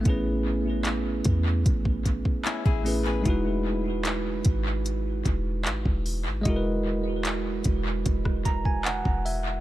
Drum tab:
HH |x---x-x-x-x-x-o-|x---x-x-x-x-x-o-|x---x-x-x-x-x-o-|
CP |----x-------x---|----x-------x---|----x-------x---|
SD |----------------|----------------|---------r------|
BD |o-----o-oooo-o--|o-----o---o--o--|o-----o-oooo-o--|